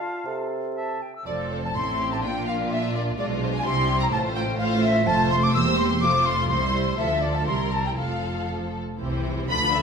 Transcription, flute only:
Already playing: A5
0.76 A5
1.02 G5
1.15 E6
1.27 D5
1.52 C5
1.64 A5
1.76 C6
2.13 A5
2.24 G5
2.48 F5
2.72 E5
2.95 D5
3.19 D5
3.44 C5
3.56 G#5
3.66 C6
4.02 A#5
4.12 A5
4.35 G5
4.58 F5
4.82 E5
5.06 A5
5.30 C6
5.43 D6
5.54 E6
5.77 C6
6.01 D6
6.25 C6
6.48 C6
6.97 E5
7.22 D5
7.35 A5
7.46 C6
7.71 A5
7.87 G5
7.98 F5

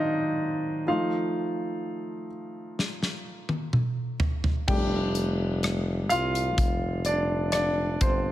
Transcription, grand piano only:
Already playing: D#3 F#3 C4 D4 D#4 F4 C5 D5 D#5 F5
0.86 F3 A3 D#4 F4 F5
4.68 G3 A3 D4 G4 G5
6.09 F4 F5
7.06 D4 D5
7.52 D4 D5
8.02 C4 C5

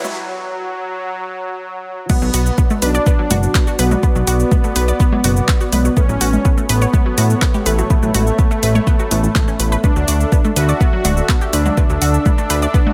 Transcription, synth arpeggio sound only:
0.04 F#3
2.10 B3 B4
2.22 F#3 F#4
2.34 F#4 F#5
2.58 B3 B4
2.70 A3 A4
2.82 B4 B5
2.95 D5 D6
3.06 B3 B4
3.19 F#3 F#4
3.31 F#4 F#5
3.55 B3 B4
3.67 F#4 F#5
3.79 B4 B5
3.91 F#3 F#4
4.03 B3 B4
4.16 F#3 F#4
4.27 F#4 F#5
4.52 B3 B4
4.64 A3 A4
4.76 B4 B5
4.88 D5 D6
5.00 B3 B4
5.12 F#3 F#4
5.24 F#4 F#5
5.48 B3 B4
5.61 F#4 F#5
5.73 B4 B5
5.85 F#3 F#4
5.97 B3 B4
6.09 F#3 F#4
6.21 F#4 F#5
6.45 B3 B4
6.58 A3 A4
6.69 B4 B5
6.82 C#5 C#6
6.93 B3 B4
7.06 F#3 F#4
7.18 F#4 F#5
7.42 B3 B4
7.54 G4 G5
7.66 B4 B5
7.78 F#3 F#4
7.90 B3 B4
8.03 F#3 F#4
8.14 F#4 F#5
8.39 B3 B4
8.51 A3 A4
8.63 B4 B5
8.75 C#5 C#6
8.87 B3 B4
8.99 F#3 F#4
9.11 B3 B4
9.35 B3 B4
9.48 C#4 C#5
9.60 B4 B5
9.72 B4 B5
9.84 B3 B4
9.96 F#3 F#4
10.08 F#4 F#5
10.32 B3 B4
10.45 A3 A4
10.56 B4 B5
10.69 D5 D6
10.81 B3 B4
10.93 F#3 F#4
11.05 F#4 F#5
11.29 B3 B4
11.41 G4 G5
11.53 B4 B5
11.66 F#3 F#4
11.77 B3 B4
11.90 F#3 F#4
12.02 F#4 F#5
12.26 B3 B4
12.38 A3 A4
12.50 B4 B5
12.62 D5 D6
12.74 B3 B4
12.87 F#3 F#4

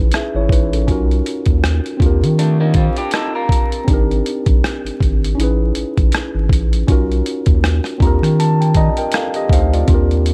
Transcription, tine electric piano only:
Already playing: C#4 D#4 E4 G#4 B4
0.15 G#4 E5
0.36 E4 C#5
0.52 D#4 B4
0.74 C#4 A4
0.87 C#4 D#4 F4 F#4
0.92 A#4
1.97 C4 D4
2.02 F4 G4
2.06 A#4
3.85 C4 D4
3.89 D#4 G4
3.93 A#4
5.35 C#4 D#4
5.40 E4 G#4 B4
6.87 C#4 D#4 F4 F#4
6.92 A#4
7.98 C4 D4
8.02 F4 G4 A#5
8.07 A#4
8.40 A5
8.61 G5
8.77 D5 D#5 A#5
8.98 A#4 G5
9.15 A4 F5
9.36 G4 D#5
9.53 D#4 C5 F5
9.73 F4 D5
9.85 C4 D4
9.90 F4 G4
9.94 A#4

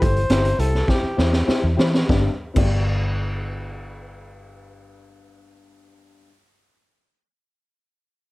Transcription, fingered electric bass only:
0.02 G1
0.30 G1
0.59 C2
1.03 muted fingered electric bass stroke
1.18 E2
1.48 muted fingered electric bass stroke
1.64 E2
1.78 E3
2.10 G1
2.56 G1

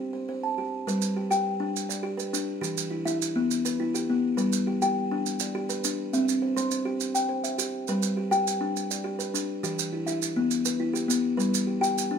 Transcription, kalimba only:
Already playing: G4
0.13 C5
0.29 C5
0.43 A5
0.58 G4
0.87 G3 B4
1.16 G4
1.30 G4 G5
1.60 D4
1.89 D5
2.03 G4
2.17 B4
2.33 D4
2.61 E3 G4
2.90 E4
3.05 E4 E5
3.36 B3
3.65 B4
3.80 E4
3.94 G4
4.09 B3
4.37 G3 B4
4.67 G4
4.82 G4 G5
5.11 D4
5.41 D5
5.55 G4
5.69 B4
5.85 D4
6.13 C4 E5
6.42 C5
6.57 C5 C6
6.85 G4
7.15 G5
7.29 C5
7.44 E5
7.58 G4
7.89 G3 B4
8.17 G4
8.31 G4 G5
8.61 D4
8.91 D5
9.04 G4
9.19 B4
9.34 D4
9.63 E3 G4
9.93 E4
10.06 E4 E5
10.36 B3
10.65 B4
10.80 E4
10.93 G4
11.08 B3
11.37 G3 B4
11.67 G4
11.81 G4 G5
12.11 D4

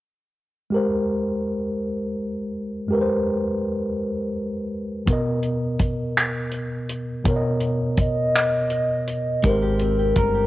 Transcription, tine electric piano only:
0.70 G#3 G4 A#4
0.76 C5
2.88 G#3 G4 A#4
2.94 B4
3.01 C5
5.06 B2 B3
5.10 A#4 D#5
7.24 B2 B3 A#4
7.30 C#5
7.36 D#5
9.43 G#3 G4 A#4
9.49 C5

